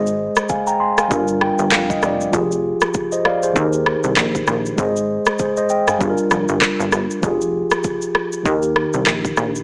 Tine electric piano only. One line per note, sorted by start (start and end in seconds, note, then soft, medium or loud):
0.00 1.07 G#3 medium
0.00 1.08 G#4 medium
0.00 1.09 C5 medium
0.00 1.13 D#5 medium
0.49 0.67 F5 medium
0.49 0.66 G#5 medium
0.67 0.80 G5 medium
0.67 0.79 A#5 medium
0.80 0.97 G#5 medium
0.80 0.97 C6 medium
0.98 1.27 F5 medium
0.98 1.27 G#5 medium
1.08 2.29 G3 medium
1.08 2.30 D4 medium
1.08 2.31 F4 medium
1.13 2.32 A#4 medium
1.41 1.70 G5 medium
1.72 1.88 F5 medium
1.90 2.02 D#5 medium
2.02 2.31 D5 medium
2.31 3.52 F3 medium
2.31 3.53 F4 medium
2.31 2.94 G4 medium
2.36 2.94 G#4 medium
3.12 3.25 C5 medium
3.12 3.24 D#5 medium
3.25 3.42 D5 medium
3.25 3.42 F5 medium
3.43 3.72 G#4 medium
3.43 3.72 C5 medium
3.53 4.74 D#3 medium
3.53 4.75 D#4 medium
3.53 4.76 G4 medium
3.58 4.77 A#4 medium
4.76 5.97 G#3 medium
4.76 5.38 G#4 medium
4.76 5.38 C5 medium
4.81 5.39 D#5 medium
5.39 5.57 G#4 medium
5.39 5.56 C5 medium
5.57 5.70 C5 medium
5.57 5.69 D#5 medium
5.70 5.87 D#5 medium
5.70 5.87 G5 medium
5.88 6.17 F5 medium
5.88 6.17 G#5 medium
5.98 7.19 G3 medium
5.98 7.20 D4 medium
5.98 7.21 F4 medium
6.03 6.09 G#4 medium
6.10 7.25 A#4 medium
7.21 8.42 F3 medium
7.21 8.43 F4 medium
7.21 8.43 G4 medium
7.26 8.44 G#4 medium
8.43 9.63 D#3 medium
8.43 9.63 D#4 medium
8.43 9.63 G4 medium
8.48 9.63 A#4 medium